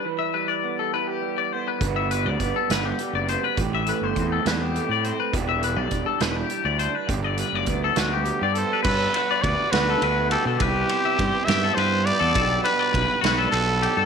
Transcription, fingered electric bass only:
\new Staff \with { instrumentName = "Fingered electric bass" } { \clef bass \time 6/8 \key g \major \tempo 4. = 68 r2. | g,,8. d,16 g,,16 r16 g,,8 r16 fis,,8 r16 | a,,8. g,,16 e,8 e,8. a,8 r16 | e,,8. b,,16 e,,16 r16 e,,8 r16 d,8 r16 |
g,,8. fis,,16 d,8 d,8. g,8 r16 | g,8 r8 d,16 r16 d,8 d,8. b,16 | c,8 r8 g,16 r16 g,8 g,8. e,16 | b,,8 r8 b,,16 r16 b,,8 b,,8. g,16 | }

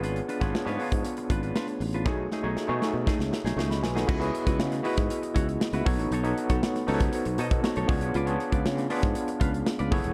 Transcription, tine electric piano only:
\new Staff \with { instrumentName = "Tine electric piano" } { \time 4/4 \key b \mixolydian \tempo 4 = 118 << { r1 | r2. cis'''16 <dis'' b''>16 <b' gis''>16 <a' fis''>16~ | <a' fis''>16 r2. r8. | r2 r8 <cis'' a''>16 <a' fis''>16 <fis' dis''>16 cis''8 r16 |
r1 | } \\ { <b d' eis' gis' cis''>8 r16 <b d' eis' gis' cis''>8 <b d' eis' gis' cis''>4.~ <b d' eis' gis' cis''>16 r4 | <a dis' fis' gis' cis''>8. <a dis' fis' gis' cis''>8 <a dis' fis' gis' cis''>4.~ <a dis' fis' gis' cis''>16 r4 | <b e' fis' gis' dis''>16 <b e' fis' gis' cis'' dis''>4 r16 <b e' fis' gis' dis''>4.~ <b e' fis' gis' dis''>16 r16 <b dis' fis' a' cis''>8~ | <b dis' fis' a' cis''>16 <b dis' fis' a' cis''>4 r16 <b dis' fis' a' bis' cis''>4.~ <b dis' fis' a' bis' cis''>16 r16 <b d' eis' gis' cis''>8~ |
<b d' eis' gis' cis''>16 <b d' eis' gis' cis''>4 r16 <b d' eis' gis' cis''>4.~ <b d' eis' gis' cis''>16 r16 <b e' gis' a' cis''>8 | } >> }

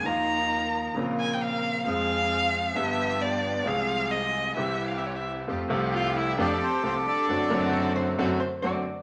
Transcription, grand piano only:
\new Staff \with { instrumentName = "Grand piano" } { \clef bass \time 4/4 \key f \minor \tempo 4 = 133 <ees, ees f bes f'>2 <bes,, bes, des bes c' f'>2 | <f, f aes c' aes'>2 <g,, g, f b d' g'>2 | <c, c f aes c' aes'>2 <c, c e g c' g'>2 | \key f \major <f, f a c' g'>8 <c, c f a c' g'>4. <f, f a c' g'>8 r8 <c, c f a c' g'>8 r8 |
<fis, d fis a c' fis'>8 <fis, d fis a c' fis'>4. <fis, d fis a c' fis'>8 r8 <fis, d fis a c' fis'>8 r8 | }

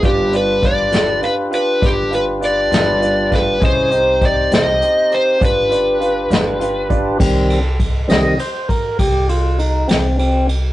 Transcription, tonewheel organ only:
\new Staff \with { instrumentName = "Tonewheel organ" } { \time 12/8 \key c \minor \tempo 4. = 67 <d' f' g' b'>1. | <des' e' aes' des''>8 <c' ees' g' c''>2~ <c' ees' g' c''>8 <d' f' g' b'>2. | <ees g c'>8 r4 <ees g c' ees''>8 c''8 bes'8 g'8 f'8 ees'8 c'8 c'8 r8 | }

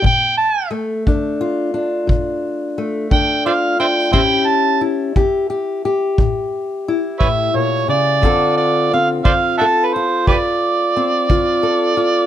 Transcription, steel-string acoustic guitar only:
\new Staff \with { instrumentName = "Steel-string acoustic guitar" } { \time 12/8 \key d \minor \tempo 4. = 59 << { r4 a8 d'8 f'8 d'4. a8 d'8 f'8 d'8 | <cis' e' g'>4 e'8 g'8 g'8 g'4. e'2 | <d c' f' a'>4 c'8 f'8 a'8 f'4. c'8 f'8 a'8 f'8 | } \\ { bes,4 r8 d4 r8 bes,4 r8 d4 r8 | a,4 r8 cis'4 r8 a,4 r8 a,8 bes,8 cis8 | d,4 r8 d4 r8 d,4 r8 d4 r8 | } >> }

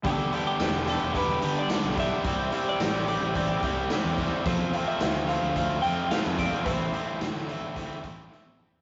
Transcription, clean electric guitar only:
\new Staff \with { instrumentName = "Clean electric guitar" } { \time 4/4 \key g \mixolydian \tempo 4 = 109 a'8. g'8. a'8 b'8. d''8. e''8~ | e''8. d''8. d''2 r8 | c''8. e''8. f''4 g''8 f''8 d''8 | c''2 r2 | }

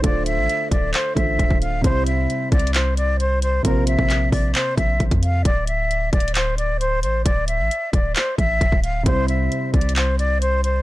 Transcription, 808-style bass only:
\new Staff \with { instrumentName = "808-style bass" } { \clef bass \time 4/4 \key d \minor \tempo 4 = 133 d,,8. a,,16 r8 d,,8 r8 a,,8 d,,16 d,,8. | c,4 r8 c,2~ c,8 | bes,,8. bes,,8. bes,,8 r8 bes,,8 bes,,16 f,8. | d,,4. d,,2 a,,8 |
d,,8. a,,16 r8 d,,8 r8 a,,8 d,,16 d,,8. | c,4 r8 c,2~ c,8 | }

